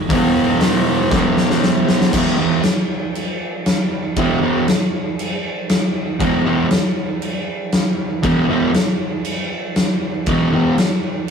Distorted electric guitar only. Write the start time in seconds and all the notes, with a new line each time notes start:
0.09 E2 B2
0.14 E3
1.10 E2 B2
1.15 E3
2.13 E2 B2 E3
2.38 E2 B2 E3
4.17 E2 B2 E3
4.42 E2 B2 E3
6.19 E2 B2 E3
6.45 E2 B2 E3
8.23 E2 B2 E3
8.48 E2 B2 E3
10.27 E2 B2 E3
10.52 E2 B2 E3